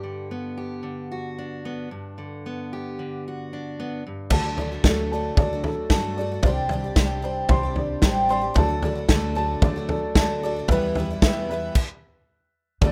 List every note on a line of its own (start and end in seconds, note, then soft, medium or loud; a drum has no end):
0.00 1.88 G2 medium
0.00 0.82 D3 soft
0.00 0.31 G3 soft
0.00 1.38 D4 soft
0.00 0.57 G4 medium
0.31 1.64 B3 soft
0.57 1.11 G4 soft
0.83 1.87 D3 soft
1.11 1.88 F#4 medium
1.38 3.53 D4 soft
1.65 1.89 B3 medium
1.91 4.02 G2 medium
2.18 2.98 D3 soft
2.46 3.78 B3 soft
2.73 3.26 G4 medium
2.99 4.02 D3 medium
3.28 4.03 F#4 soft
3.53 4.02 D4 soft
3.80 4.02 B3 soft
4.07 4.29 G2 medium
4.30 4.76 D2 medium
4.30 6.41 D2 medium
4.30 4.44 D3 medium
4.30 6.41 D3 medium
4.30 4.47 F#3 medium
4.30 4.45 F#3 medium
4.30 4.45 A3 medium
4.30 4.48 D4 medium
4.30 4.44 D4 medium
4.30 4.42 F#4 medium
4.30 4.48 A4 medium
4.30 4.48 D5 loud
4.30 5.10 A5 medium
4.30 kick loud
4.30 floor tom medium
4.30 crash medium
4.44 4.58 A3 soft
4.44 4.59 D4 soft
4.44 4.58 F#4 soft
4.56 4.74 F#3 medium
4.56 4.71 F#3 medium
4.56 4.72 A3 medium
4.56 4.74 D4 medium
4.56 4.72 D4 medium
4.56 4.74 A4 medium
4.56 4.75 D5 medium
4.56 5.36 D5 medium
4.56 floor tom medium
4.61 4.71 F#4 medium
4.72 4.85 A3 soft
4.72 4.86 D4 soft
4.72 4.85 F#4 medium
4.84 5.30 D2 medium
4.84 5.12 D3 medium
4.84 5.01 F#3 medium
4.84 5.12 F#3 medium
4.84 5.12 A3 medium
4.84 5.01 D4 medium
4.84 5.13 D4 medium
4.84 5.13 F#4 medium
4.84 5.63 A4 medium
4.84 5.01 A4 medium
4.84 5.02 D5 medium
4.84 kick loud
4.84 snare loud
5.10 5.27 F#3 medium
5.10 5.37 F#3 medium
5.10 5.38 A3 medium
5.10 5.27 D4 medium
5.10 5.28 A4 medium
5.10 5.28 D5 medium
5.10 5.89 A5 medium
5.14 5.39 D4 medium
5.14 5.40 F#4 medium
5.36 5.60 D2 medium
5.36 5.53 F#3 loud
5.36 5.52 F#3 soft
5.36 5.52 A3 medium
5.36 5.54 D4 medium
5.36 5.54 A4 medium
5.36 5.54 D5 loud
5.36 6.15 D5 medium
5.36 kick loud
5.36 floor tom loud
5.40 5.53 D4 medium
5.40 5.51 F#4 medium
5.53 5.91 A3 soft
5.53 5.92 D4 medium
5.53 5.92 F#4 medium
5.63 5.80 F#3 medium
5.63 5.80 D4 medium
5.63 5.81 A4 medium
5.63 6.44 A4 medium
5.63 5.81 D5 medium
5.63 floor tom medium
5.90 6.36 G2 medium
5.90 6.18 D3 medium
5.90 6.07 F#3 medium
5.90 6.16 F#3 medium
5.90 6.18 A3 medium
5.90 6.07 D4 medium
5.90 6.19 D4 medium
5.90 6.19 F#4 medium
5.90 6.08 A4 medium
5.90 6.08 D5 medium
5.90 6.44 A5 medium
5.90 kick loud
5.90 snare medium
6.17 6.34 F#3 medium
6.17 6.31 F#3 medium
6.17 6.32 A3 medium
6.17 6.34 D4 medium
6.17 6.35 A4 medium
6.17 6.44 D5 medium
6.17 6.35 D5 medium
6.21 6.32 D4 medium
6.21 6.30 F#4 medium
6.32 6.46 A3 soft
6.32 6.45 D4 soft
6.32 6.45 F#4 medium
6.43 6.89 C2 medium
6.43 8.54 C2 medium
6.43 8.53 C3 medium
6.43 6.71 C3 medium
6.43 6.60 G3 loud
6.43 6.70 G3 medium
6.43 6.71 C4 medium
6.43 6.61 D4 loud
6.43 6.72 D4 medium
6.43 7.22 C5 medium
6.43 6.61 C5 medium
6.43 6.61 D5 loud
6.43 kick loud
6.43 floor tom loud
6.47 6.72 G4 medium
6.69 6.87 G3 medium
6.69 6.84 G3 medium
6.69 6.85 C4 medium
6.69 6.87 D4 medium
6.69 6.87 C5 medium
6.69 6.88 D5 medium
6.69 floor tom medium
6.73 6.84 D4 medium
6.73 6.83 G4 medium
6.84 6.96 C4 soft
6.84 6.97 D4 soft
6.84 6.97 G4 medium
6.95 7.42 C2 medium
6.95 7.24 C3 medium
6.95 7.13 G3 medium
6.95 7.21 G3 medium
6.95 7.23 C4 medium
6.95 7.13 D4 medium
6.95 7.23 D4 medium
6.95 7.24 G4 medium
6.95 7.14 C5 medium
6.95 7.76 D5 medium
6.95 7.14 D5 medium
6.95 kick loud
6.95 snare loud
7.22 7.48 G3 medium
7.22 7.40 G3 medium
7.22 7.49 C4 medium
7.22 7.40 D4 medium
7.22 7.50 D4 medium
7.22 7.51 G4 medium
7.22 8.03 C5 medium
7.22 7.41 C5 medium
7.22 7.41 D5 medium
7.49 7.95 C2 medium
7.49 7.63 G3 medium
7.49 7.66 G3 loud
7.49 7.64 C4 medium
7.49 7.67 D4 medium
7.49 7.64 D4 medium
7.49 7.62 G4 medium
7.49 7.67 C5 loud
7.49 7.67 D5 loud
7.49 8.29 C6 medium
7.49 kick loud
7.49 floor tom loud
7.63 8.03 C4 soft
7.63 8.03 D4 soft
7.63 8.04 G4 medium
7.76 7.93 G3 medium
7.76 7.93 D4 medium
7.76 7.94 C5 medium
7.76 7.94 D5 medium
7.76 8.58 D5 medium
7.76 floor tom medium
8.02 8.49 A1 medium
8.02 8.30 C3 medium
8.02 8.20 G3 medium
8.02 8.28 G3 medium
8.02 8.29 C4 medium
8.02 8.20 D4 medium
8.02 8.30 D4 medium
8.02 8.31 G4 medium
8.02 8.20 C5 medium
8.02 8.57 C5 medium
8.02 8.20 D5 medium
8.02 kick loud
8.02 snare loud
8.29 8.46 G3 medium
8.29 8.43 G3 medium
8.29 8.43 C4 medium
8.29 8.46 D4 medium
8.29 8.42 D4 medium
8.29 8.40 G4 medium
8.29 8.47 C5 medium
8.29 8.47 D5 medium
8.29 8.57 C6 medium
8.41 8.55 C4 soft
8.41 8.55 D4 soft
8.41 8.56 G4 medium
8.54 9.02 D2 medium
8.54 10.66 D2 medium
8.54 8.69 D3 medium
8.54 10.66 D3 medium
8.54 8.73 F#3 loud
8.54 8.70 A3 medium
8.54 8.69 D4 medium
8.54 8.73 D4 loud
8.54 8.67 F#4 medium
8.54 8.74 A4 loud
8.54 9.35 A5 medium
8.54 kick loud
8.54 floor tom loud
8.58 8.74 D5 loud
8.69 8.83 A3 soft
8.69 8.84 D4 medium
8.69 8.83 F#4 medium
8.82 8.97 D3 medium
8.82 8.99 F#3 medium
8.82 8.97 A3 medium
8.82 9.00 D4 medium
8.82 8.96 D4 medium
8.82 8.94 F#4 medium
8.82 9.00 A4 medium
8.82 9.62 D5 medium
8.82 9.00 D5 loud
8.82 floor tom medium
8.95 9.08 A3 soft
8.95 9.09 D4 soft
8.95 9.09 F#4 medium
9.08 9.55 D2 loud
9.08 9.34 D3 medium
9.08 9.26 F#3 medium
9.08 9.35 A3 medium
9.08 9.26 D4 medium
9.08 9.36 D4 loud
9.08 9.37 F#4 medium
9.08 9.27 A4 medium
9.08 9.88 A4 medium
9.08 9.27 D5 medium
9.08 kick loud
9.08 snare loud
9.35 9.61 D3 medium
9.35 9.53 F#3 medium
9.35 9.63 A3 medium
9.35 9.53 D4 medium
9.35 9.63 D4 medium
9.35 9.64 F#4 medium
9.35 9.53 A4 medium
9.35 9.54 D5 medium
9.35 10.15 A5 medium
9.62 9.85 D2 medium
9.62 9.77 D3 medium
9.62 9.79 F#3 loud
9.62 9.77 A3 medium
9.62 9.80 D4 loud
9.62 9.76 D4 medium
9.62 9.75 F#4 medium
9.62 9.80 A4 loud
9.62 10.42 D5 medium
9.62 9.80 D5 loud
9.62 kick loud
9.62 floor tom loud
9.76 10.17 A3 soft
9.76 10.17 D4 medium
9.76 10.16 F#4 medium
9.89 10.06 F#3 medium
9.89 10.06 D4 medium
9.89 10.70 A4 medium
9.89 10.06 A4 medium
9.89 10.07 D5 medium
9.89 floor tom medium
10.15 10.61 D2 medium
10.15 10.42 D3 medium
10.15 10.33 F#3 medium
10.15 10.43 A3 medium
10.15 10.33 D4 medium
10.15 10.44 D4 medium
10.15 10.45 F#4 medium
10.15 10.33 A4 medium
10.15 10.34 D5 loud
10.15 10.70 A5 medium
10.15 kick loud
10.15 snare loud
10.42 10.57 D3 medium
10.42 10.59 F#3 medium
10.42 10.57 A3 medium
10.42 10.60 D4 medium
10.42 10.57 D4 medium
10.42 10.55 F#4 medium
10.42 10.60 A4 medium
10.42 10.70 D5 medium
10.42 10.60 D5 loud
10.56 10.71 A3 medium
10.56 10.71 D4 medium
10.56 10.70 F#4 medium
10.68 11.14 E2 loud
10.68 11.73 E2 medium
10.68 10.97 E2 medium
10.68 10.97 B2 medium
10.68 11.73 E3 medium
10.68 10.96 E3 medium
10.68 10.86 G3 loud
10.68 10.97 G3 medium
10.68 10.86 E4 loud
10.68 11.48 B4 medium
10.68 10.87 B4 loud
10.68 10.87 E5 loud
10.68 kick loud
10.68 floor tom loud
10.72 10.98 B3 medium
10.72 10.98 E4 loud
10.95 11.10 E3 medium
10.95 11.13 G3 medium
10.95 11.11 G3 medium
10.95 11.11 B3 medium
10.95 11.13 E4 medium
10.95 11.13 B4 medium
10.95 11.14 E5 loud
10.95 floor tom medium
11.00 11.09 E4 medium
11.11 11.23 E3 soft
11.11 11.24 G3 soft
11.11 11.24 B3 medium
11.11 11.24 E4 medium
11.22 11.68 E2 medium
11.22 11.50 E2 medium
11.22 11.51 B2 medium
11.22 11.49 E3 medium
11.22 11.39 G3 medium
11.22 11.50 G3 loud
11.22 11.51 B3 medium
11.22 11.40 E4 medium
11.22 11.51 E4 medium
11.22 11.40 B4 medium
11.22 11.76 E5 medium
11.22 11.40 E5 medium
11.22 kick loud
11.22 snare loud
11.49 11.77 E3 medium
11.49 11.66 G3 medium
11.49 11.77 G3 medium
11.49 11.78 B3 medium
11.49 11.66 E4 medium
11.49 11.78 E4 medium
11.49 11.76 B4 medium
11.49 11.67 B4 medium
11.49 11.67 E5 medium
11.75 kick loud
11.75 crash medium
12.81 12.92 D2 medium
12.81 12.92 D3 medium
12.81 12.92 F#3 loud
12.81 12.92 A3 loud
12.81 12.92 A3 medium
12.81 12.92 D4 medium
12.81 12.92 F#4 medium
12.81 12.92 A4 medium
12.81 12.92 D5 loud
12.81 kick loud
12.81 floor tom loud